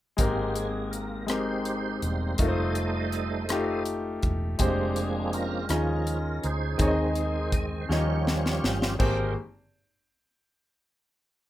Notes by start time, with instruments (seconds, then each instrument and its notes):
0.17 fingered electric bass G#1, grand piano G#2 G#3 C4 G4 A#4, tonewheel organ G#3 A#3 C4 G4, kick, closed hi-hat
0.55 tonewheel organ G#4, closed hi-hat
0.91 tonewheel organ A#4, closed hi-hat
1.27 grand piano G#3 C4 G4 A#4, tonewheel organ D#4 G4 C5, cross-stick, closed hi-hat
1.65 closed hi-hat
2.02 fingered electric bass E1, tonewheel organ G3 A#3 C4, closed hi-hat
2.38 fingered electric bass F1, tonewheel organ G3 A3 D#4 C5 D#5, grand piano A3 D#4 F4 A#4, kick, closed hi-hat
2.43 tonewheel organ A4
2.48 grand piano C5
2.75 closed hi-hat
3.12 cross-stick, closed hi-hat
3.49 grand piano A3 D#4 F4 G4, cross-stick, closed hi-hat
3.86 closed hi-hat
4.23 fingered electric bass E1, kick, closed hi-hat
4.58 fingered electric bass F1, tonewheel organ F3 G#3 A#3 C4 D4 G4, grand piano G#3 C4 G4 C5, kick, closed hi-hat
4.66 grand piano D4
4.96 tonewheel organ G#4, closed hi-hat
5.33 tonewheel organ C#4 F4 A#4, closed hi-hat
5.69 fingered electric bass D#2, tonewheel organ F3 G#3 C#4, grand piano C#4 D#4 F4 G#4 D#5, cross-stick, closed hi-hat
6.07 closed hi-hat
6.43 fingered electric bass D2, tonewheel organ D#4 G#4 C5, closed hi-hat
6.77 fingered electric bass D#2, tonewheel organ D#3 G#3 C4, grand piano D#3 C4 D#4 G#4, kick, closed hi-hat
6.82 grand piano C#5
6.88 grand piano D#5
7.15 closed hi-hat
7.52 tonewheel organ D#5, kick, closed hi-hat
7.81 tonewheel organ C5
7.89 fingered electric bass D#2, grand piano D#3 C#4 F4 G4 D#5, tonewheel organ F3 G3 C#4 F4 G4 C#5, snare
8.27 snare
8.46 snare
8.63 fingered electric bass G1, snare
8.82 snare
8.99 grand piano G#1 A#3 G4 G#4 C5, fingered electric bass G#1, tonewheel organ G#3 C4 A#4 G5, kick, crash